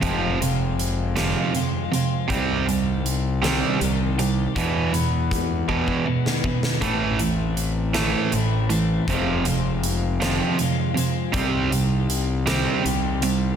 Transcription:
<<
  \new Staff \with { instrumentName = "Clean electric guitar" } { \clef bass \time 6/8 \key f \lydian \tempo 4. = 53 <f, c f aes c' f'>8 <f aes c' f'>4 <f, c f aes c' f'>8 <f aes c' f'>8 <f aes c' f'>8 | <c ees g c' g'>8 <g c' g'>4 <c ees g c' g'>8 <ees g c' g'>8 <g c' g'>8 | <e, b, e gis b e'>8 <e gis b e'>4 <e, b, e gis b e'>8 <e gis b e'>8 <e gis b e'>8 | <a, e a c' e'>8 <a c' e'>4 <a, e a c' e'>8 <e a c' e'>8 <a c' e'>8 |
<f, c f aes c' f'>8 <f aes c' f'>4 <f, c f aes c' f'>8 <f aes c' f'>8 <f aes c' f'>8 | <c ees g c' g'>8 <g c' g'>4 <c ees g c' g'>8 <ees g c' g'>8 <g c' g'>8 | }
  \new Staff \with { instrumentName = "Overdriven electric guitar" } { \clef bass \time 6/8 \key f \lydian <f, c f>8 <f, c>8 r8 <f, c f>8 <f, c>8 <f, c>8 | <c g c'>8 <c g>8 r8 <c g c'>8 <c g>8 <c g>8 | <e, b, e>8 <e, b,>8 r8 <e, b, e>8 <e, b,>8 <e, b,>8 | <a, e a>8 <a, e>8 r8 <a, e a>8 <a, e>8 <a, e>8 |
<f, c f>8 <f, c>8 r8 <f, c f>8 <f, c>8 <f, c>8 | <c g c'>8 <c g>8 r8 <c g c'>8 <c g>8 <c g>8 | }
  \new Staff \with { instrumentName = "Fingered electric bass" } { \clef bass \time 6/8 \key f \lydian f,,2 r4 | c,2 c,4 | e,2 r4 | a,,2 a,,4 |
f,,2 r4 | c,2 c,4 | }
  \new DrumStaff \with { instrumentName = "Drums" } \drummode { \time 6/8 <hh bd>8 hh8 hh8 <hh sn>8 hh8 hh8 | <hh bd>8 hh8 hh8 <hh sn>8 hh8 hh8 | <hh bd>8 hh8 <hh bd>8 bd16 bd8 sn16 bd16 sn16 | <hh bd>8 hh8 hh8 <hh sn>8 hh8 hh8 |
<hh bd>8 hh8 hh8 <hh sn>8 hh8 hh8 | <hh bd>8 hh8 hh8 <hh sn>8 hh8 hh8 | }
>>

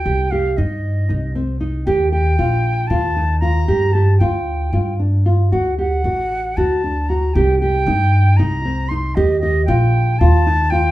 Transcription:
<<
  \new Staff \with { instrumentName = "Flute" } { \time 7/8 \key c \dorian \tempo 4 = 116 g''8 f''8 ees''4. r4 | g''8 g''4. a''4 bes''8~ | bes''8 a''8 g''4. r4 | fis''8 fis''4. a''4 bes''8 |
g''8 g''4. bes''4 c'''8 | ees''8 ees''8 g''4 a''4 g''8 | }
  \new Staff \with { instrumentName = "Nylon-string guitar" } { \time 7/8 \key c \dorian g'8 g'8 ees'4 ees'8 c'8 ees'8 | g'8 g'8 f'4 f'8 ees'8 f'8 | g'8 g'8 f'4 f'8 d'8 f'8 | fis'8 g'8 fis'4 fis'8 d'8 fis'8 |
g'8 g'8 ees'4 ees'8 c'8 ees'8 | g'8 g'8 f'4 f'8 ees'8 f'8 | }
  \new Staff \with { instrumentName = "Upright bass" } { \clef bass \time 7/8 \key c \dorian c,4 g,4 c,4. | ees,4 bes,,4 ees,4. | g,4 d,4 g,4. | d,4 a,,4 d,4. |
c,4 g,4 c,4. | ees,4 bes,,4 ees,4. | }
>>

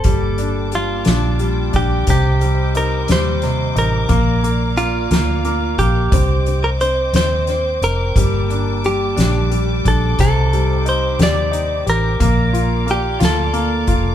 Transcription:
<<
  \new Staff \with { instrumentName = "String section" } { \time 6/8 \key c \dorian \tempo 4. = 59 << { d'''2.~ | d'''2.~ | d'''2. | d'''2.~ |
d'''2.~ | d'''2. | d'''2. | } \\ { <bes g'' a''>2. | <c'' ees''>2. | <bes' d'' f''>2. | <c'' ees'' g''>2. |
<bes a''>2. | <ees' c''>2. | <bes d'' f''>2. | } >> }
  \new Staff \with { instrumentName = "Clean electric guitar" } { \time 6/8 \key c \dorian a'4 f'4. g'8 | g'4 bes'8 c''4 bes'8~ | bes'4 f'4. g'8~ | g'8. bes'16 c''8 c''4 bes'8~ |
bes'4 g'4. a'8 | a'4 c''8 d''4 bes'8~ | bes'4 g'8 a'4. | }
  \new Staff \with { instrumentName = "Grand piano" } { \time 6/8 \key c \dorian g8 d'8 g8 d'8 g8 d'8 | c8 g8 ees'8 g8 c8 ees'8 | bes8 bes8 bes8 bes8 bes8 bes8 | c'8 c'8 c'8 c'8 c'8 c'8 |
g8 d'8 g8 d'8 g8 d'8 | c8 g8 ees'8 g'8 ees'8 g'8 | bes8 f'8 bes8 f'8 bes8 f'8 | }
  \new Staff \with { instrumentName = "Fingered electric bass" } { \clef bass \time 6/8 \key c \dorian g,,4. bes,,4 bes,,8 | c,4. ees,4 a,,8 | bes,,4. d,4 bes,,8 | c,4. ees,4 f,,8 |
g,,4. bes,,4 bes,,8 | c,4. ees,4 a,,8 | bes,,4. d,4 f,,8 | }
  \new DrumStaff \with { instrumentName = "Drums" } \drummode { \time 6/8 <hh bd>8 hh8 hh8 <hh sn>8 hh8 <hh bd>8 | <hh bd>8 hh8 hh8 <hh sn>8 <hh sn>8 hh8 | <hh bd>8 hh8 hh8 <hh sn>8 hh8 <hh bd>8 | <hh bd>8 hh8 hh8 <hh sn>8 <hh sn>8 hh8 |
<hh bd>8 hh8 hh8 <hh sn>8 hh8 <hh bd>8 | <hh bd>8 hh8 hh8 <hh sn>8 hh8 hh8 | <hh bd>8 hh8 hh8 <hh sn>8 hh8 <hh bd>8 | }
>>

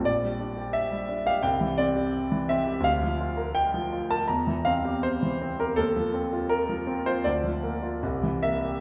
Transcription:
\new Staff \with { instrumentName = "Grand piano" } { \time 4/4 \key c \mixolydian \tempo 4 = 82 << { d''4 e''8. f''16 g''8 d''4 e''8 | f''4 g''8. a''16 bes''8 f''8 c''8. bes'16 | a'4 bes'8. c''16 d''4. e''8 | } \\ { bes,,16 g16 d'16 g'8 g16 d'16 g'16 c,16 e16 c'16 g'8 e16 c'16 g'16 | d,16 f16 f'16 bes'8 f16 f'16 bes'16 e,16 e16 c'16 g'8 e16 c'16 g'16 | ees,16 f16 c'16 f'8 f16 c'16 f'16 d,16 f16 bes16 f'16 c,16 e16 bes16 g'16 | } >> }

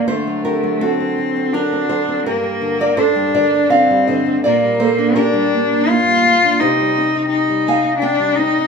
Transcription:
<<
  \new Staff \with { instrumentName = "Cello" } { \time 3/4 \key g \minor \tempo 4 = 83 a4 c'4 d'4 | bes4 d'4 c'4 | bes4 d'4 f'4 | \key c \minor ees'4 ees'4 d'8 ees'8 | }
  \new Staff \with { instrumentName = "Nylon-string guitar" } { \time 3/4 \key g \minor << { <a' c''>8 <g' bes'>8 <fis' a'>4 <fis' bes'>8 <a' c''>8 | <g' bes'>8. <bes' d''>16 <a' c''>8 <bes' d''>8 <d'' f''>8 <c'' ees''>8 | <bes' d''>8 <a' c''>8 <g' bes'>4 r4 | \key c \minor <g' c''>4. <f'' aes''>8 <ees'' g''>4 | } \\ { d16 fis16 c'16 fis8 c'16 fis16 c'16 fis16 c'16 fis16 c'16 | g,16 g16 d16 d'8 g16 d16 d'16 d16 g16 d16 d'16 | bes,16 g16 bes16 d'8 g16 bes16 d'16 bes16 g16 bes16 d'16 | c16 g16 c'16 ees'8 g16 c'16 ees'16 c'16 g16 c'16 ees'16 | } >> }
>>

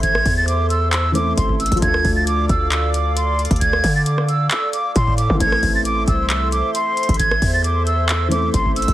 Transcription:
<<
  \new Staff \with { instrumentName = "Flute" } { \time 4/4 \key a \minor \tempo 4 = 134 gis'''8. a'''16 d'''8 e'''8 e'''8 d'''8 c'''8 e'''8 | gis'''8. a'''16 d'''8 e'''8 e'''8 d'''8 c'''4 | gis'''8. a'''16 d'''8 e'''8 e'''8 d'''8 c'''8 d'''8 | gis'''8. a'''16 d'''8 e'''8 e'''8 d'''8 c'''4 |
gis'''8. a'''16 d'''8 e'''8 e'''8 d'''8 c'''8 e'''8 | }
  \new Staff \with { instrumentName = "Analog synth pad" } { \time 4/4 \key a \minor << { <c'' e'' c'''>1 | <d'' f'' d'''>1~ | <d'' f'' d'''>1 | <c'' e'' c'''>1~ |
<c'' e'' c'''>1 | } \\ { a'1~ | a'1~ | a'1 | a'1~ |
a'1 | } >> }
  \new Staff \with { instrumentName = "Grand piano" } { \time 4/4 \key a \minor <e a c' e' a'>2~ <e a c' e' a'>8 <e a c' e' a'>4. | <f a d' f' a'>1~ | <f a d' f' a'>1 | <e a c' e' a'>1~ |
<e a c' e' a'>2~ <e a c' e' a'>8 <e a c' e' a'>4. | }
  \new Staff \with { instrumentName = "808-style bass" } { \clef bass \time 4/4 \key a \minor a,,8 e,2~ e,8 a,,8. a,,16 | d,8 d,4 d,2~ d,16 d,16~ | d,8 d4. r4 a,8. d16 | a,,8 a,,4 c,4~ c,16 r4 a,,16~ |
a,,8 e,2~ e,8 a,,8. a,,16 | }
  \new DrumStaff \with { instrumentName = "Drums" } \drummode { \time 4/4 <hh bd>16 ss16 <hho bd>8 hh8 hh8 <hc hh>8 hh8 <hh bd>16 bd16 hh32 hh32 <hh bd>32 hh32 | <hh bd>16 ss16 <hho bd>8 hh8 <hh bd>8 <hc hh>8 hh8 hh8 hh32 hh32 <hh bd>32 hh32 | <hh bd>16 ss16 <hho bd>8 hh16 ss16 hh8 <hc hh>8 hh8 <hh bd>16 bd16 hh16 bd16 | <hh bd>16 ss16 <hho bd>8 hh8 <hh bd>8 <hc hh>8 hh8 hh8 hh32 hh32 <hh bd>32 hh32 |
<hh bd>16 ss16 <hho bd>8 hh8 hh8 <hc hh>8 hh8 <hh bd>16 bd16 hh32 hh32 <hh bd>16 | }
>>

